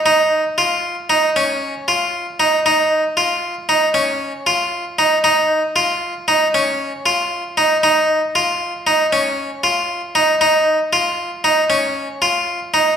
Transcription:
0.06 D#4
0.58 F4
1.10 D#4
1.36 C#4
1.88 F4
2.40 D#4
2.66 D#4
3.17 F4
3.69 D#4
3.94 C#4
4.47 F4
4.99 D#4
5.24 D#4
5.76 F4
6.28 D#4
6.54 C#4
7.06 F4
7.57 D#4
7.83 D#4
8.35 F4
8.87 D#4
9.13 C#4
9.64 F4
10.15 D#4
10.41 D#4
10.93 F4
11.44 D#4
11.70 C#4
12.22 F4
12.74 D#4

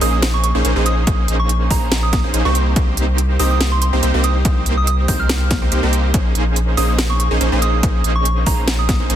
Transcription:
0.01 A#1 A#3 C#4 D#4 G#4 C5 D#6, open hi-hat
0.13 D#6
0.23 snare, closed hi-hat
0.34 C#6
0.44 C#6, closed hi-hat
0.55 A#1 A#3 C#4 D#4 G#4 C5
0.65 A#1 A#3 C#4 D#4 G#4 C5, closed hi-hat
0.76 A#1 A#3 C#4 D#4 G#4 C5
0.86 D#6, closed hi-hat
1.07 A#1 A#3 G#4 C5, kick, closed hi-hat
1.28 A#1 A#3 C#4 D#4 G#4 C5, closed hi-hat
1.40 C#6
1.49 closed hi-hat
1.71 A#1 A#3 C#4 D#4 G#4 C5 A#5, kick, open hi-hat
1.92 snare, closed hi-hat
2.03 D#6
2.13 D#6, kick, snare, closed hi-hat
2.24 A#1 A#3 C#4 D#4 G#4 C5
2.34 A#1 A#3 C#4 D#4 G#4 C5, closed hi-hat
2.45 C2 A#3 C4 D#4 G4 C5 C#6
2.55 closed hi-hat
2.76 C2 A#3 C4 D#4 G4 C5, kick, closed hi-hat
2.97 C2 A#3 C4 D#4 G4 C5, closed hi-hat
3.18 closed hi-hat
3.39 C2 A#3 C4 D#4 G4 C5 D#6, open hi-hat
3.51 D#6
3.61 snare, closed hi-hat
3.72 C6
3.82 C6, closed hi-hat
3.93 C2 A#3 C4 D#4 G4 C5
4.03 C2 A#3 C4 D#4 G4 C5, closed hi-hat
4.14 C2 A#3 C4 D#4 G4 C5
4.24 D#6, closed hi-hat
4.45 C2 A#3 C4 D#4 G4 C5, kick, closed hi-hat
4.66 C2 A#3 C4 D#4 G4 C5, closed hi-hat
4.77 D#6
4.87 D#6, closed hi-hat
5.08 C2 A#3 C4 D#4 G4 C5 G6, kick, open hi-hat
5.20 F6
5.29 snare, closed hi-hat
5.51 kick, snare, closed hi-hat
5.62 C2 A#3 C4 D#4 G4 C5
5.72 C2 A#3 C4 D#4 G4 C5, closed hi-hat
5.83 C2 A#3 C4 D#4 G4 C5
5.93 closed hi-hat
6.14 A#1 A#3 C#4 D#4 G#4, kick, closed hi-hat
6.35 A#1 A#3 C#4 D#4 G#4 C5, closed hi-hat
6.56 closed hi-hat
6.77 A#1 A#3 C#4 D#4 G#4 C5 D#6, open hi-hat
6.89 D#6
6.99 snare, closed hi-hat
7.10 C#6
7.20 C#6, closed hi-hat
7.31 A#1 A#3 C#4 D#4 G#4 C5
7.41 A#1 A#3 C#4 D#4 G#4 C5, closed hi-hat
7.52 A#1 A#3 C#4 D#4 G#4 C5
7.62 D#6, closed hi-hat
7.83 A#1 C#4 D#4, kick, closed hi-hat
8.04 A#1 A#3 C#4 D#4 G#4 C5, closed hi-hat
8.15 C#6
8.25 closed hi-hat
8.46 A#1 A#3 C#4 D#4 G#4 C5 A#5, kick, open hi-hat
8.68 snare, closed hi-hat
8.79 D#6
8.89 D#6, kick, snare, closed hi-hat
9.00 A#1 A#3 C#4 D#4 G#4 C5
9.10 A#1 A#3 C#4 D#4 G#4 C5, closed hi-hat

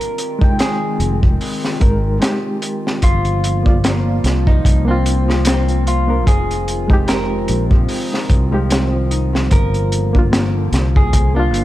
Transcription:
Already playing: D#3 G#3 C4 F4 A#4
0.01 closed hi-hat
0.18 closed hi-hat
0.39 G#3 D#4, kick
0.44 G5
0.59 G#4, snare, closed hi-hat
1.00 F1, closed hi-hat
1.23 kick
1.41 open hi-hat
1.65 snare
1.79 G#1 G#3 D#4 A#4, kick, closed hi-hat
2.20 G#3 D#4 G4, snare, closed hi-hat
2.62 closed hi-hat
2.87 snare
3.02 G1 F3 G3 A#3 F4, kick, closed hi-hat
3.25 closed hi-hat
3.44 closed hi-hat
3.63 A#3 D5, kick
3.69 F4
3.84 A#3, snare, closed hi-hat
4.24 C2, snare, closed hi-hat
4.47 F3 D#4, kick
4.65 C2, kick, closed hi-hat
4.85 A#3 C4 D4
4.91 F4
5.06 closed hi-hat
5.28 F3, snare
5.45 A#3 C4, snare, closed hi-hat
5.68 F3, closed hi-hat
5.86 D4 F4, closed hi-hat
6.07 F3 A#3 D4 A#4
6.26 F1 D#3 F3 G#3 C4 G#4, kick, closed hi-hat
6.51 closed hi-hat
6.68 closed hi-hat
6.88 G#3 D#4, kick
6.93 G4
7.08 C4 A#4, snare, closed hi-hat
7.48 A#1, closed hi-hat
7.71 F3, kick
7.89 open hi-hat
8.12 D#4, snare
8.30 C2, kick, closed hi-hat
8.51 F3 G#3 D#4 G4
8.69 C4, snare, closed hi-hat
8.92 F3
9.10 D#4, closed hi-hat
9.33 F3, snare
9.50 G1 D3 F3 A#3 F4 A#4, kick, closed hi-hat
9.74 closed hi-hat
9.92 closed hi-hat
10.13 A#3 D4, kick
10.18 F4
10.32 A#3, snare, closed hi-hat
10.72 C2, snare, closed hi-hat
10.96 F3 G#4, kick
11.13 kick, closed hi-hat
11.34 A#3 D4 F4
11.40 F4
11.53 G1, closed hi-hat

